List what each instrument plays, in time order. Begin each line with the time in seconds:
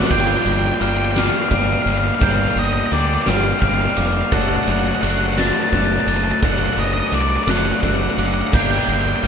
Already playing: clean electric guitar F#3 A3 D4 F#4, glockenspiel D6
0.02 overdriven electric guitar F#3 A3, snare
0.07 overdriven electric guitar G3, pedal steel guitar F4, lead electric guitar F#5, glockenspiel G6
0.11 fingered electric bass G1, overdriven electric guitar A#3 D4 G4, pedal steel guitar A#4 G5 D6, lead electric guitar G5, kick, crash
0.20 lead electric guitar G5
0.27 lead electric guitar G5
0.37 lead electric guitar G5
0.42 fingered electric bass G1, lead electric guitar G5, ride
0.52 lead electric guitar G5
0.59 lead electric guitar G5
0.66 lead electric guitar G5
0.74 lead electric guitar G5
0.80 fingered electric bass G1, overdriven electric guitar G3 A#3 D4 G4, lead electric guitar G5, glockenspiel F6, ride
0.89 lead electric guitar G5
0.97 lead electric guitar G5
1.05 lead electric guitar G5
1.12 overdriven electric guitar D4 G4, lead electric guitar G5
1.16 overdriven electric guitar G3 A#3, lead electric guitar F5, snare, ride
1.26 lead electric guitar F5
1.33 lead electric guitar F5
1.43 lead electric guitar F5
1.50 fingered electric bass G1, overdriven electric guitar G3 A#3 D4 G4, lead electric guitar F5, glockenspiel F6, kick, ride
1.58 lead electric guitar F5
1.66 lead electric guitar F5
1.73 lead electric guitar F5
1.82 fingered electric bass G1, lead electric guitar F5
1.87 lead electric guitar F5, ride
1.98 lead electric guitar F5
2.07 lead electric guitar F5
2.15 lead electric guitar F5
2.19 fingered electric bass G1, overdriven electric guitar G3 A#3 D4 G4, lead electric guitar F5, glockenspiel G6, kick, ride
2.32 lead electric guitar F5
2.39 lead electric guitar F5
2.48 lead electric guitar F5
2.56 fingered electric bass G1, lead electric guitar D#5, ride
2.65 lead electric guitar D#5
2.73 lead electric guitar D#5
2.80 lead electric guitar D#5
2.86 lead electric guitar D#5
2.91 fingered electric bass D2, overdriven electric guitar G3 A#3 D4 G4, lead electric guitar D5, ride
3.00 lead electric guitar D5
3.07 lead electric guitar D5
3.14 lead electric guitar D5
3.22 overdriven electric guitar G4, lead electric guitar D5
3.26 fingered electric bass G1, overdriven electric guitar G3 A#3 D4, lead electric guitar F5, glockenspiel F6, snare, ride
3.37 lead electric guitar F5
3.44 lead electric guitar F5
3.52 lead electric guitar F5
3.60 fingered electric bass G1, overdriven electric guitar G3 A#3 D4, lead electric guitar F5, kick, ride
3.64 overdriven electric guitar G4
3.68 lead electric guitar F5
3.74 lead electric guitar F5
3.82 lead electric guitar F5
3.90 lead electric guitar F5
3.97 fingered electric bass F1, lead electric guitar F5, glockenspiel D6, ride
4.06 lead electric guitar F5
4.14 lead electric guitar F5
4.21 lead electric guitar F5
4.31 fingered electric bass F#1, overdriven electric guitar F#3 A3 D4 A4, pedal steel guitar F#4 F#5 A5, lead electric guitar F#5, glockenspiel A6, kick, ride
4.42 lead electric guitar F#5
4.49 lead electric guitar F#5
4.56 lead electric guitar F#5
4.64 fingered electric bass F#1, lead electric guitar F#5, ride
4.72 lead electric guitar F#5
4.80 lead electric guitar F#5
4.87 lead electric guitar F#5
4.95 lead electric guitar F#5
5.02 fingered electric bass F#1, overdriven electric guitar F#3 A3 D4 A4, lead electric guitar F#5, glockenspiel F#6, ride
5.11 lead electric guitar F#5
5.18 lead electric guitar F#5
5.26 lead electric guitar F#5
5.33 overdriven electric guitar A4, lead electric guitar F#5
5.38 overdriven electric guitar F#3 A3 D4, lead electric guitar A5, snare, ride
5.47 lead electric guitar A5
5.53 lead electric guitar A5
5.62 lead electric guitar A5
5.69 fingered electric bass F#1, overdriven electric guitar F#3, lead electric guitar A5, kick, ride
5.73 overdriven electric guitar A3 D4 A4, lead electric guitar A5, glockenspiel F#6
5.86 lead electric guitar A5
5.93 lead electric guitar A5
6.00 lead electric guitar A5
6.07 fingered electric bass F#1, lead electric guitar A5, ride
6.17 lead electric guitar A5
6.24 lead electric guitar A5
6.32 lead electric guitar A5
6.42 fingered electric bass F#1, overdriven electric guitar F#3 A3 D4 A4, lead electric guitar F#5, glockenspiel A6, kick, ride
6.52 lead electric guitar F#5
6.59 lead electric guitar F#5
6.67 lead electric guitar F#5
6.73 lead electric guitar F#5
6.77 fingered electric bass F#1, lead electric guitar D#5, ride
6.87 lead electric guitar D#5
6.93 lead electric guitar D#5
7.00 lead electric guitar D#5
7.08 lead electric guitar D#5
7.12 fingered electric bass C2, overdriven electric guitar F#3 A3 D4 A4, lead electric guitar D5, ride
7.21 lead electric guitar D5
7.29 lead electric guitar D5
7.36 lead electric guitar D5
7.44 fingered electric bass F#1, overdriven electric guitar A4, lead electric guitar D5, snare, ride
7.48 overdriven electric guitar F#3 A3 D4, lead electric guitar F#5, glockenspiel F#6
7.57 lead electric guitar F#5
7.65 lead electric guitar F#5
7.72 lead electric guitar F#5
7.81 fingered electric bass F#1, overdriven electric guitar F#3 A3 D4 A4, lead electric guitar F#5, kick, ride
7.88 lead electric guitar F#5
7.96 lead electric guitar F#5
8.03 lead electric guitar F#5
8.10 lead electric guitar F#5
8.17 fingered electric bass F#1, lead electric guitar F#5, glockenspiel D6, ride
8.27 lead electric guitar F#5
8.34 lead electric guitar F#5
8.41 lead electric guitar F#5
8.47 lead electric guitar F#5
8.52 fingered electric bass G1, overdriven electric guitar G3 A#3 D4 G4, pedal steel guitar G4 F5 A#5, lead electric guitar G5, glockenspiel G6, kick, crash
8.62 lead electric guitar G5
8.71 lead electric guitar G5
8.78 lead electric guitar G5
8.85 fingered electric bass G1, lead electric guitar G5
8.89 ride
8.94 lead electric guitar G5
9.02 lead electric guitar G5
9.09 lead electric guitar G5
9.16 lead electric guitar G5
9.22 fingered electric bass G1, overdriven electric guitar G3 A#3 D4, lead electric guitar G5, glockenspiel F6, ride